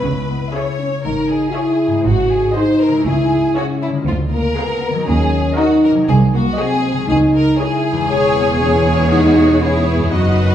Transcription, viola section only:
0.54 G#4 C#5
1.54 G#4 C#5
2.56 G#4 C5
3.56 G#4 C#5
4.57 G#4 A#4
5.57 F#4 A#4
6.58 F#4 G#4
7.59 G#4
8.10 G#4
8.60 G#4
9.62 G#4
10.14 F#4 B4

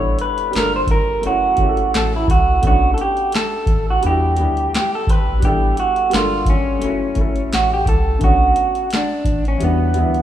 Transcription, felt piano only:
Already playing: G3 B3 D4 E4 A4
0.51 G3 A#3 D4
0.56 F4 A4
1.21 F#3 A3 C#4
1.26 E4 F#4
1.56 F#3 A3 C#4
1.61 E4 G4
1.69 A4
2.61 A3 B3 C#4
2.66 D4 F#5
4.01 G3 B3 D4
4.06 E4 F#4
4.36 G3 B3 D4
4.41 E4 G4
5.39 G3 B3 D4
5.45 E4 A4
6.09 G3 A#3 D4
6.15 F4 A4
6.79 F#3 A3 C#4
6.84 E4 F#4
7.14 F#3 A3 C#4
7.20 E4 A4
8.18 D3 A3 B3
8.23 C#4 F#4
9.58 E3 G3 B3
9.63 D4 F#4
9.94 E3 G3 B3
9.98 D4 E4

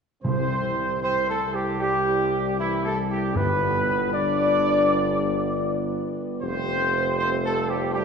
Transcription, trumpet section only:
0.24 C5
1.02 C5
1.29 A4
1.54 G4
1.80 G4
2.59 E4
2.85 A4
3.10 G4
3.36 B4
4.12 D5
6.42 C5
7.19 C5
7.45 A4
7.69 G4
7.94 G4

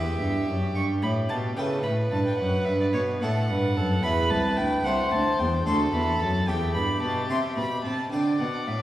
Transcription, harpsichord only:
Already playing: E2 B3 E4 G4
0.21 G2
0.48 F#2
0.75 G2
1.03 A2
1.30 B2
1.57 C#3 A3 E4 A4
1.85 A2
2.12 G2
2.39 F#2
2.66 G2
2.95 B2
3.22 A2 A3 D4 A4
3.50 G2
3.77 F#2
4.04 E2 E4 G4 B4
4.31 C2
4.58 D2
4.85 C2 E4 G4 C5
5.12 D2
5.40 E2
5.66 D2 D4 F#4 A4
5.94 E2
6.21 F#2
6.48 E2 B3 G4 E5
6.75 G2
7.02 B2
7.29 C3 C4 G4 E5
7.56 B2
7.85 C3
8.12 D3 C4 D4 D5
8.40 B2
8.68 A2

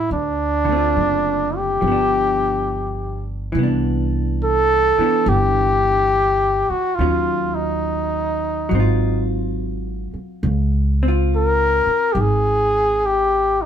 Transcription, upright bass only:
0.11 D2
0.96 F#1
1.82 G1
3.55 C2
4.98 muted upright bass stroke
5.26 G1
6.70 muted upright bass stroke
6.99 D#2
8.71 G#1
10.14 muted upright bass stroke
10.43 C#2
11.86 muted upright bass stroke
12.15 G#1

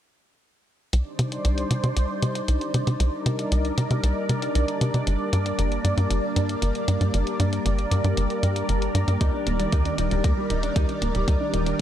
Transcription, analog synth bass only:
0.93 C2
1.19 C3
1.45 C2
1.71 C3
1.84 C3
1.97 C2
2.22 C3
2.48 C2
2.74 C3
2.87 C3
3.00 C2
3.26 C3
3.52 C2
3.78 C3
3.91 C3
4.03 C2
4.29 C3
4.55 C2
4.81 C3
4.94 C3
5.07 G1
5.33 G2
5.59 G1
5.84 G2
5.97 G2
6.10 G1
6.36 G2
6.62 G1
6.88 G2
7.01 G2
7.14 G1
7.40 G2
7.66 G1
7.91 G2
8.04 G2
8.17 G1
8.43 G2
8.69 G1
8.95 G2
9.08 G2
9.21 D#2
9.47 D#1
9.73 D#2
9.98 D#1
10.11 D#1
10.24 D#2
10.50 D#1
10.76 D#2
11.02 D#1
11.15 D#1
11.28 D#2
11.54 D#1

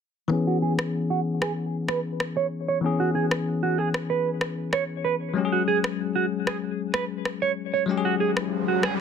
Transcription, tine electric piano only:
0.28 E3 B3 C#4
0.33 G#4
2.81 E3 B3 C#4
2.86 G#4
5.34 F#3 G#3 C#4
5.38 G4
5.45 G#4
7.86 F#3 G#3 C#4
7.91 G4
7.98 G#4

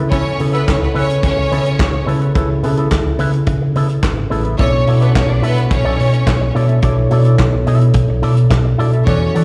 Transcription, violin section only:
0.12 C#4 C#5
0.53 B3 B4
0.69 C#4 C#5
0.82 B3 B4
0.96 C#4 C#5
1.24 C#4 C#5
4.60 C#4 C#5
5.00 B3 B4
5.15 C#4 C#5
5.29 D4 D5
5.42 B3 B4
5.71 C#4 C#5
9.07 C#4 C#5

